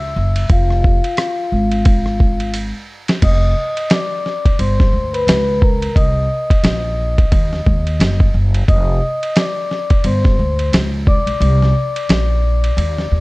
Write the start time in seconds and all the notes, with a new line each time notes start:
Already playing: C#2 E5 E6
0.16 F#1
0.36 ride
0.49 F1 F4 F5, kick, ride
0.70 cross-stick
0.84 kick
1.04 ride
1.17 cross-stick, hi-hat pedal, ride
1.52 G#1
1.72 ride
1.85 kick, ride
2.06 cross-stick
2.20 kick
2.40 ride
2.54 hi-hat pedal, ride
3.08 snare, ride
3.22 F1 D#5 D#6, kick, crash, ride
3.77 ride
3.90 D5 D6, snare, hi-hat pedal, ride
4.26 snare
4.45 kick, ride
4.59 G1 C5 C6, ride
4.80 kick, snare
4.93 D2
5.13 B4 B5, ride
5.27 C#2, snare, hi-hat pedal, ride
5.61 A#4 A#5, kick
5.82 ride
5.95 C2 D#5 D#6, kick, ride
6.50 kick, ride
6.63 A#1, snare, hi-hat pedal, ride
7.18 kick, ride
7.32 D#2, kick, ride
7.53 snare
7.66 D#2, kick
7.87 ride
8.00 F#1, snare, hi-hat pedal, ride
8.20 kick
8.34 F#1
8.54 ride
8.68 F1 D#5 D#6, kick, ride
9.23 ride
9.36 D5 D6, snare, hi-hat pedal, ride
9.71 snare
9.90 kick, ride
10.04 G1 C5 C6, ride
10.24 kick, snare
10.39 D2
10.59 ride
10.73 C#2, snare, hi-hat pedal, ride
11.07 D5 D6, kick
11.26 A#1, ride
11.41 C2, ride
11.62 snare
11.96 ride
12.09 A#1, snare, hi-hat pedal, ride
12.64 ride
12.77 D#2, ride
12.98 snare
13.11 D#2